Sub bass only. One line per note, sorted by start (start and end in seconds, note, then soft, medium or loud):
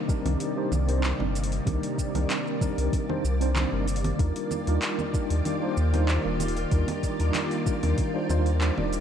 0.25 0.36 C2 medium
0.72 1.13 C2 loud
1.20 1.60 G1 medium
1.67 1.79 C2 loud
2.15 2.26 C2 medium
2.78 2.89 C2 medium
3.24 3.66 C2 medium
3.72 4.13 G1 medium
4.19 4.32 D#2 medium
4.67 4.78 D#2 medium
5.30 5.41 D#2 medium
5.77 6.18 D#2 loud
6.25 6.65 D#1 medium
6.72 6.84 D#2 loud
7.20 7.31 D#2 medium
7.83 7.94 D#2 loud
8.29 8.71 D#2 medium
8.78 9.00 D#1 medium